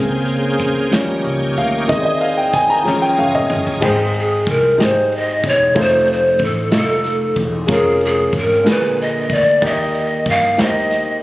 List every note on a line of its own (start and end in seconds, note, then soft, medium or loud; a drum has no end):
0.00 0.88 C#2 medium
0.00 0.88 C#3 medium
0.00 0.93 C#3 medium
0.00 0.89 G#3 soft
0.00 0.91 A#3 medium
0.00 0.89 C4 medium
0.00 0.93 G#4 medium
0.00 0.96 C5 medium
0.28 closed hi-hat soft
0.60 kick medium
0.60 closed hi-hat medium
0.91 1.22 D#2 medium
0.91 1.85 F3 medium
0.91 1.85 G3 soft
0.91 1.89 A#3 medium
0.91 1.86 C#4 medium
0.91 1.89 D#4 medium
0.91 1.89 G4 medium
0.91 1.89 C#5 medium
0.91 snare medium
0.91 closed hi-hat medium
1.24 1.54 C#2 medium
1.24 closed hi-hat soft
1.57 1.87 D2 medium
1.57 1.91 F5 medium
1.57 closed hi-hat medium
1.87 2.82 D#2 medium
1.87 2.81 D#3 medium
1.87 2.81 G#3 soft
1.87 2.82 C4 medium
1.87 2.86 C4 medium
1.87 2.86 D#4 medium
1.87 2.87 G#4 medium
1.87 2.01 D#5 medium
1.87 2.85 D#5 medium
1.87 kick loud
1.87 closed hi-hat medium
2.01 2.05 D5 medium
2.01 2.22 D#5 medium
2.21 2.36 F5 medium
2.21 closed hi-hat soft
2.37 2.54 G5 medium
2.53 2.70 G#5 medium
2.53 kick medium
2.53 closed hi-hat medium
2.70 3.03 A#5 loud
2.84 3.15 D#2 medium
2.84 3.28 F3 medium
2.84 3.28 G#3 soft
2.84 3.28 C#4 medium
2.84 3.83 C#4 medium
2.84 3.83 F4 medium
2.84 2.93 G4 soft
2.84 3.83 D#5 medium
2.84 snare soft
2.94 3.87 G#4 medium
3.02 3.19 G5 medium
3.18 3.48 F#1 medium
3.18 3.34 F5 medium
3.35 3.80 D#5 medium
3.35 mid tom medium
3.50 3.80 G1 medium
3.50 mid tom medium
3.67 floor tom medium
3.81 4.43 G#1 medium
3.81 4.75 G#2 medium
3.81 4.49 G#3 medium
3.81 4.50 D#4 medium
3.81 4.51 C5 medium
3.81 4.50 G5 medium
3.81 kick loud
3.81 crash loud
3.85 4.14 G#4 medium
4.14 ride soft
4.19 4.51 G#4 medium
4.47 4.77 C2 medium
4.47 4.81 A#4 medium
4.47 kick medium
4.47 ride medium
4.78 5.39 G#1 medium
4.78 5.46 G#3 medium
4.78 5.46 D#4 medium
4.78 5.47 G4 medium
4.78 5.47 D#5 medium
4.78 snare medium
4.78 ride medium
4.82 5.18 C5 medium
5.12 5.50 D#5 medium
5.12 ride soft
5.44 5.74 E1 medium
5.44 kick medium
5.44 ride medium
5.48 5.83 C#5 medium
5.75 6.36 F1 medium
5.75 6.43 A3 medium
5.75 6.43 D#4 medium
5.75 6.44 F4 medium
5.75 6.44 C5 medium
5.75 kick loud
5.75 ride medium
5.81 6.11 C5 loud
6.08 ride soft
6.12 6.46 C5 medium
6.39 6.70 A1 medium
6.39 kick medium
6.39 ride medium
6.44 6.75 A4 medium
6.71 7.32 F1 medium
6.71 7.39 A3 medium
6.71 7.40 D#4 medium
6.71 7.40 F4 medium
6.71 7.41 D#5 medium
6.71 snare loud
6.71 ride medium
6.75 7.42 A4 loud
7.04 snare soft
7.04 ride soft
7.36 7.66 E1 medium
7.36 kick medium
7.36 ride soft
7.67 8.29 F1 loud
7.67 8.35 G#3 medium
7.67 8.36 C#4 medium
7.67 8.36 F4 medium
7.67 8.37 A#4 medium
7.67 kick loud
7.67 ride medium
7.73 8.01 G#4 loud
8.01 ride soft
8.05 8.33 G#4 medium
8.33 8.63 G#1 medium
8.33 kick medium
8.33 ride medium
8.38 8.71 A#4 medium
8.63 9.26 A#1 loud
8.63 9.58 A#2 medium
8.63 9.32 D3 medium
8.63 9.32 A#3 medium
8.63 9.33 G#4 medium
8.63 9.33 B4 medium
8.63 snare medium
8.63 ride medium
8.70 9.00 B4 loud
8.98 9.35 D#5 loud
8.98 ride soft
9.30 9.60 D2 medium
9.30 9.67 D5 loud
9.30 kick medium
9.30 ride medium
9.62 10.22 D#2 medium
9.62 10.55 D#3 medium
9.62 10.29 A#3 medium
9.62 10.29 D#4 medium
9.62 10.30 G4 medium
9.62 9.70 D5 medium
9.62 10.31 D#5 loud
9.62 kick loud
9.62 ride medium
9.71 10.34 D#5 medium
9.95 ride soft
10.26 10.56 G2 medium
10.26 10.64 F5 loud
10.26 kick medium
10.26 ride medium
10.57 11.19 D#2 medium
10.57 11.23 A#3 medium
10.57 11.23 D#4 medium
10.57 11.23 G4 medium
10.57 11.23 C5 medium
10.57 snare loud
10.57 ride medium
10.62 11.23 D#5 loud
10.91 snare soft
10.91 ride soft